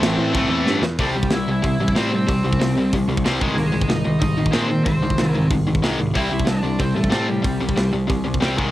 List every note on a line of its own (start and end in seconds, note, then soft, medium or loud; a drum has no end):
0.00 0.17 A1 loud
0.00 0.32 A2 loud
0.00 0.34 E3 loud
0.00 0.35 A3 loud
0.00 0.69 C4 medium
0.00 0.63 C5 medium
0.00 snare loud
0.00 crash medium
0.18 0.32 A2 loud
0.33 0.48 G1 medium
0.33 0.49 A2 medium
0.33 0.50 E3 medium
0.33 0.49 A3 medium
0.33 kick loud
0.33 crash medium
0.50 0.64 E2 medium
0.50 0.83 A2 medium
0.50 0.83 E3 medium
0.50 0.82 A3 medium
0.67 0.81 G2 medium
0.67 snare medium
0.82 0.96 E2 medium
0.82 snare loud
0.98 1.14 C2 medium
0.98 1.14 C3 medium
0.98 1.14 G3 medium
0.98 1.07 A3 medium
0.98 1.15 C4 medium
0.98 kick loud
0.98 open hi-hat medium
1.03 1.09 A4 medium
1.07 1.30 G3 medium
1.07 1.31 G4 medium
1.15 1.30 C2 medium
1.15 1.30 C3 medium
1.15 1.30 G3 medium
1.19 1.32 G3 medium
1.19 kick medium
1.30 1.47 C2 medium
1.30 1.46 C3 medium
1.30 1.46 G3 medium
1.30 1.47 E4 medium
1.30 snare loud
1.30 open hi-hat soft
1.35 1.50 E5 medium
1.48 1.63 C2 medium
1.48 1.61 C3 medium
1.48 1.61 G3 medium
1.48 1.94 E4 medium
1.52 2.00 E5 medium
1.62 1.79 C2 medium
1.62 1.77 C3 medium
1.62 1.78 G3 medium
1.62 kick loud
1.62 open hi-hat soft
1.79 1.95 A1 medium
1.79 1.94 C3 medium
1.79 1.95 G3 medium
1.88 kick medium
1.95 2.27 A2 medium
1.95 2.11 C3 medium
1.95 2.11 G3 medium
1.95 2.11 C4 medium
1.95 2.12 C4 medium
1.95 2.12 C5 medium
1.95 snare medium
1.95 open hi-hat soft
2.12 2.26 C3 medium
2.12 2.27 G3 medium
2.12 2.90 C4 medium
2.12 2.90 C5 medium
2.27 2.44 C2 medium
2.27 2.42 C3 medium
2.27 2.43 G3 medium
2.27 kick loud
2.27 open hi-hat medium
2.44 2.60 C2 medium
2.44 2.58 C3 medium
2.44 2.59 G3 medium
2.53 kick medium
2.60 2.92 C2 medium
2.60 2.75 C3 medium
2.60 2.75 G3 medium
2.60 snare loud
2.60 open hi-hat medium
2.77 2.91 C3 medium
2.77 2.92 G3 medium
2.93 3.08 C2 medium
2.93 3.08 C3 medium
2.93 3.08 G3 medium
2.93 kick medium
2.93 open hi-hat medium
3.08 3.24 C2 medium
3.08 3.23 C3 medium
3.08 3.24 G3 medium
3.17 kick medium
3.25 3.41 C2 medium
3.25 3.40 C3 medium
3.25 3.41 G3 medium
3.25 3.41 C4 medium
3.25 snare medium
3.25 open hi-hat soft
3.40 3.57 C2 medium
3.40 3.54 G#2 medium
3.40 3.55 D#3 medium
3.40 3.56 G#3 medium
3.40 kick medium
3.55 3.73 C2 medium
3.55 3.71 G#2 medium
3.55 3.71 D#3 medium
3.55 3.63 A#3 medium
3.55 3.57 G#4 medium
3.55 3.65 A#4 medium
3.55 open hi-hat medium
3.63 3.87 G#3 medium
3.63 3.89 G#4 medium
3.72 3.89 C2 medium
3.72 3.87 G#2 medium
3.72 3.87 D#3 medium
3.82 kick medium
3.88 4.05 C2 medium
3.88 4.03 G#2 medium
3.88 4.04 D#3 medium
3.88 4.20 D#4 medium
3.88 4.19 D#5 medium
3.88 snare loud
3.88 open hi-hat medium
4.04 4.21 C2 medium
4.04 4.20 G#2 medium
4.04 4.20 D#3 medium
4.20 4.37 C2 medium
4.20 4.36 G#2 medium
4.20 4.36 D#3 medium
4.20 4.52 D#4 medium
4.20 4.54 D#5 medium
4.20 kick medium
4.20 open hi-hat soft
4.37 4.54 A#1 medium
4.37 4.51 G#2 medium
4.37 4.51 D#3 medium
4.46 kick medium
4.51 4.68 G#2 medium
4.51 4.68 D#3 medium
4.51 4.69 G#3 medium
4.51 4.84 C4 medium
4.51 4.83 C5 medium
4.51 snare loud
4.51 open hi-hat soft
4.55 4.85 A#2 medium
4.69 4.84 G#2 medium
4.69 4.84 D#3 medium
4.85 5.02 C2 medium
4.85 5.00 G#2 medium
4.85 5.01 D#3 medium
4.85 5.48 C4 medium
4.85 5.32 C5 medium
4.85 kick loud
4.85 open hi-hat medium
5.02 5.18 C2 medium
5.02 5.17 G#2 medium
5.02 5.17 D#3 medium
5.10 kick medium
5.18 5.50 C2 medium
5.18 5.33 G#2 medium
5.18 5.33 D#3 medium
5.18 snare loud
5.18 open hi-hat medium
5.32 5.49 G#2 medium
5.32 5.50 D#3 medium
5.32 5.46 A#4 medium
5.50 5.66 C2 medium
5.50 5.66 G#2 medium
5.50 5.66 D#3 medium
5.50 kick loud
5.50 open hi-hat medium
5.67 5.83 C2 medium
5.67 5.81 G#2 medium
5.67 5.82 D#3 medium
5.75 kick medium
5.82 5.98 C2 medium
5.82 5.97 G#2 medium
5.82 5.98 D#3 medium
5.82 5.99 G#3 loud
5.82 snare medium
5.82 open hi-hat medium
5.99 6.15 C2 medium
5.99 6.14 G#2 medium
5.99 6.13 D#3 medium
6.14 6.31 C2 medium
6.14 6.29 C3 medium
6.14 6.30 G3 medium
6.14 6.31 C4 medium
6.14 6.46 E4 medium
6.14 kick loud
6.14 open hi-hat medium
6.19 6.49 E5 medium
6.30 6.46 C2 medium
6.30 6.44 C3 medium
6.30 6.45 G3 medium
6.39 kick medium
6.45 6.63 C2 medium
6.45 6.61 C3 medium
6.45 6.62 G3 medium
6.45 6.78 D4 medium
6.45 snare loud
6.45 open hi-hat medium
6.49 6.63 C3 medium
6.49 6.79 D5 medium
6.63 6.79 C2 medium
6.63 6.78 C3 medium
6.63 6.78 G3 medium
6.79 6.95 C2 medium
6.79 6.94 C3 medium
6.79 6.94 G3 medium
6.79 6.95 C4 medium
6.79 6.94 C5 medium
6.79 kick medium
6.79 open hi-hat soft
6.94 7.11 A1 medium
6.94 7.08 C3 medium
6.94 7.09 G3 medium
6.94 7.11 A3 medium
6.94 7.10 A4 medium
7.04 kick medium
7.10 7.43 A2 medium
7.10 7.26 C3 medium
7.10 7.26 G3 medium
7.10 7.27 A3 medium
7.10 7.27 C4 medium
7.10 7.29 A4 medium
7.10 snare medium
7.10 open hi-hat soft
7.27 7.41 C3 medium
7.27 7.41 G3 medium
7.27 7.89 G3 medium
7.27 7.89 G4 medium
7.42 7.60 C2 medium
7.42 7.58 C3 medium
7.42 7.58 G3 medium
7.42 kick loud
7.42 open hi-hat medium
7.61 7.76 C2 medium
7.61 7.75 C3 medium
7.61 7.75 G3 medium
7.69 kick medium
7.76 8.08 C2 medium
7.76 7.91 C3 medium
7.76 7.91 G3 medium
7.76 snare loud
7.76 open hi-hat medium
7.93 8.06 C3 medium
7.93 8.07 G3 medium
8.07 8.25 C2 medium
8.07 8.23 C3 medium
8.07 8.23 G3 medium
8.07 kick loud
8.07 open hi-hat soft
8.24 8.42 C2 medium
8.24 8.39 C3 medium
8.24 8.39 G3 medium
8.34 kick medium
8.40 8.58 C2 medium
8.40 8.56 C3 medium
8.40 8.57 G3 medium
8.40 8.57 C4 medium
8.40 snare loud
8.40 open hi-hat medium
8.57 8.71 C2 medium
8.57 8.71 G#2 medium
8.57 8.71 D#3 medium
8.57 8.71 G#3 medium
8.57 kick medium